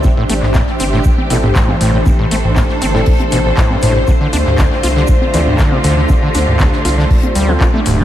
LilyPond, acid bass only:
\new Staff \with { instrumentName = "Acid bass" } { \clef bass \time 4/4 \key a \minor \tempo 4 = 119 a,16 a,16 a16 r16 a,16 r16 c'16 a,16 r8 b,16 a,,16 a,16 g,16 a,16 a,16 | a,16 a,16 a16 r16 a,16 r16 c'16 a,16 r8 b,16 a,,16 a,16 g,16 a,16 a,16 | d16 d16 d'16 r16 d16 r16 f'16 d16 r8 e16 d,16 d16 c16 d16 d16 | d16 d16 d'16 r16 d16 r16 f'16 d16 r8 g16 f16 d'16 a16 d,16 d'16 | }